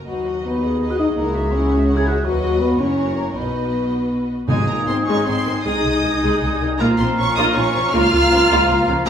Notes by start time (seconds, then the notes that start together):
0.06 D#2 F#3 D#4 F#4 B4 D#5 F#5
0.26 F#4 D#5 F#5
0.44 B3 D#4 B4 D#5 B5
0.62 F#4 G#4 D#5 F#5
0.80 D#4 B4 D#5
0.90 F#4 F#6
0.98 D#4 F#4 D#5 F#5 D#6
1.16 C#2 A#3 E4 A#4 F#5 A#5
1.34 F#4 C#5 E5
1.51 C#4 E4 A#4 F#5 C#6
1.70 F#4 C#5 E5
1.88 E4 A#4 F#5
1.97 G#4 G#6
2.06 F#4 C#5 E5 F#6
2.24 D#2 F#3 F#4 B4 D#5 F#5
2.60 B3 B5
2.79 F#1 F#2 C#4 E4 F#4 A#4 C#5 C#6
3.16 A#3 A#5
3.34 B1 B2 B3 D#4 F#4 B4 D#5 B5
4.47 G#1 G#2 G#3 D#4 G#4 G#5 D#6
4.67 G#1 G#3 A#3 D#4 A#4 A#5
4.87 G#1 D#3 C4 C5 C6
5.06 G#1 G#3 C#4 D#4 C#5 C#6
5.26 G#1 G#3 C4 D#4 C5 C6
5.45 G#1 D#3 C4
5.64 C2 G#3 D#4 G#4 D#5 G#5 D#6
5.84 C2 G#3 G#4
6.03 C2 D#3 D#4
6.22 C2 G#3 G#4
6.42 C2 G3 G#3 G#4
6.60 C2 D#3 D#4
6.79 A#1 F3 A#3 F4 A#4 F5 A#5
6.98 A#1 A#3 C4 F4 C5 C6
7.17 A#1 F3 C#4 C#5 C#6
7.35 A#1 A#3 D#4 F4 D#5 D#6
7.55 A#1 A#3 C#4 F4 C#5 C#6
7.74 A#1 F3 C#4
7.92 C#2 F3 A#3 F4 F5 A#5 F6
8.12 C#2 A#3 F4
8.31 C#2 F3 C#4
8.50 C#2 A#3 F4
8.69 C#2 A#3 F4
8.88 C#2 F3 C#4
9.05 D#2 A#3 A#4 A#5